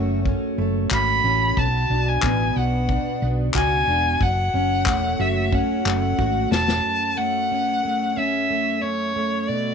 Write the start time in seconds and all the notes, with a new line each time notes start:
Already playing: F#1 F#2 A3 C#4 F#4
0.25 C#4, kick
0.58 F#1 A3
0.91 G#1 F#4 B5, kick, clap
1.24 A1 C#4
1.57 B1 B2 A5, kick
1.90 B1 D4
2.08 G#5
2.22 A1 B3, kick, clap
2.56 B1 F#4 F#5
2.89 D4, kick
3.22 B1 B3
3.54 C#2 F#4 G#5, kick, clap
3.87 E1 D4
4.20 F#1 F#2 F#5, kick
4.53 F#1 C#4
4.86 E1 A3, kick, clap
5.19 F#1 F#4 E5
5.52 C#4 F#5, kick
5.85 F#1 A3, clap
6.18 G#1 F#4, kick
6.51 E1 C#4 A5, snare
6.68 snare
6.84 F#2
7.17 A3 F#5
7.51 C#4
7.85 A3
8.17 C#4 E5
8.50 A3
8.82 C#4 C#5
9.16 A3
9.48 B2 D5